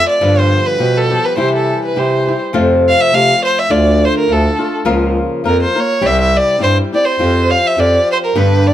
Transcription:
Already playing: nylon-string guitar F3 A3 C4 F4
0.09 violin D5
0.21 nylon-string guitar G2 D3 F3 G3 B3 G4, bass clarinet G2
0.38 violin C5
0.66 violin B4
0.79 bass clarinet B2, nylon-string guitar F3 G3 B3 G4
0.97 violin A4
1.11 nylon-string guitar F3 G3 B3 G4
1.25 violin B4
1.36 nylon-string guitar C3 E3 G3 E4 G4, bass clarinet C3, violin C5
1.55 violin A4
1.85 violin B4
1.96 bass clarinet C3, nylon-string guitar E3 G3 E4 G4, violin C5
2.27 nylon-string guitar G3 E4 G4
2.53 nylon-string guitar F2 C3 F3 A3 C4 F4, bass clarinet F2
2.88 violin F5
3.01 violin E5
3.12 bass clarinet C3, nylon-string guitar F3 A3 C4 F4, violin F5
3.45 violin C5
3.59 violin E5
3.70 bass clarinet D2, nylon-string guitar D3 A3 D4 F4, violin D5
4.05 violin C5
4.18 violin A#4
4.28 bass clarinet D2, nylon-string guitar D3 A3 D4 F4
4.32 violin A4
4.59 nylon-string guitar A3 D4 F4
4.85 bass clarinet C#2, nylon-string guitar C#3 F3 A#3 F4 A#4
5.44 bass clarinet F2, nylon-string guitar F3 A#3 F4 A#4, violin A#4
5.62 violin C5
5.75 nylon-string guitar A#3 F4 A#4
5.79 violin C#5
6.01 bass clarinet C2, nylon-string guitar C3 G3 C4 E4 G4
6.06 violin E5
6.21 violin E5
6.37 violin D5
6.58 bass clarinet G2, nylon-string guitar G3 C4 E4 G4
6.63 violin C5
6.92 nylon-string guitar C4 E4 G4, violin D5
7.05 violin C5
7.19 bass clarinet F2, nylon-string guitar F3 C4 F4 G4
7.50 violin F5
7.67 violin E5
7.77 bass clarinet F2, nylon-string guitar F3 C4 F4 G4, violin D5
8.12 violin C5
8.25 violin A#4
8.35 nylon-string guitar G2 D3 G3 B3 D4 G4, bass clarinet G2, violin B4
8.67 violin D5

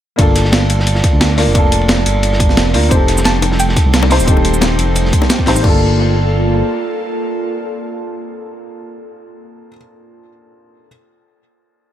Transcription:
0.16 analog synth bass G1, felt piano A#3 D4 F4, kick, closed hi-hat, ride
0.21 felt piano A4
0.36 snare, closed hi-hat, ride
0.45 snare
0.52 snare, closed hi-hat, ride
0.70 analog synth bass G1, closed hi-hat, ride
0.80 snare
0.87 closed hi-hat, ride
0.95 snare
1.04 kick, snare, closed hi-hat, ride
1.13 analog synth bass D2
1.21 snare, closed hi-hat, ride
1.37 felt piano A#3 D4 F4 A#4, snare, open hi-hat, ride
1.47 analog synth bass F1
1.52 felt piano A#3 D4 F4, kick, closed hi-hat, ride
1.57 felt piano A4
1.72 closed hi-hat, ride
1.81 ride
1.88 snare, closed hi-hat, ride
2.06 analog synth bass G1, closed hi-hat, ride
2.23 closed hi-hat, ride
2.33 snare
2.39 kick, closed hi-hat, ride
2.49 snare
2.57 analog synth bass F1, snare, closed hi-hat, ride
2.73 analog synth bass D2, felt piano A#3 D4 F4 A#4, open hi-hat, ride
2.83 ride
2.89 analog synth bass F1, analog synth pad G3 A3 D#4, felt piano C4 D#4 G4, synth pluck C5, kick, closed hi-hat, ride, shaker
2.94 felt piano A4
3.08 snare, closed hi-hat, ride
3.17 snare, high bongo, shaker
3.24 synth pluck A5, snare, closed hi-hat, ride, shaker
3.42 analog synth bass F1, closed hi-hat, ride, high bongo
3.52 snare
3.60 synth pluck G5, closed hi-hat, ride, shaker
3.69 snare
3.77 kick, snare, closed hi-hat, ride, high bongo, shaker
3.85 analog synth bass C2
3.93 snare, closed hi-hat, ride, shaker
4.03 high bongo
4.09 felt piano C4 D#4 G4 C5, snare, open hi-hat, ride, shaker
4.20 analog synth bass D#1, shaker
4.25 felt piano C4 D#4 G4, kick, closed hi-hat, ride, shaker
4.30 felt piano A4
4.37 high bongo
4.45 closed hi-hat, ride
4.54 ride, shaker
4.61 snare, closed hi-hat, ride, high bongo, shaker
4.79 analog synth bass F1, closed hi-hat, ride
4.95 closed hi-hat, ride, high bongo, shaker
5.05 snare
5.13 kick, closed hi-hat, ride, shaker
5.22 snare, high bongo
5.29 snare, closed hi-hat, ride, shaker
5.39 kick, snare
5.46 analog synth bass A1, felt piano C4 D#4 G4 C5, snare, open hi-hat, ride, shaker
5.56 high bongo, shaker
5.60 analog synth bass G1, felt piano A#3 D4, analog synth pad A#3 F4 A4, kick, crash
5.65 felt piano F4 A4

